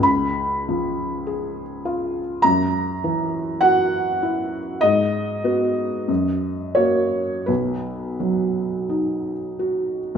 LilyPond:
<<
  \new Staff \with { instrumentName = "Felt piano" } { \time 4/4 \key b \major \tempo 4 = 49 b''2 ais''4 fis''4 | dis''4. cis''8 b'4 r4 | }
  \new Staff \with { instrumentName = "Felt piano" } { \time 4/4 \key b \major cis,8 eis8 gis'8 eis'8 fis,8 e8 fis'8 e'8 | gis,8 <b fis'>8 fis,8 <ais fis'>8 b,,8 fis8 dis'8 fis'8 | }
>>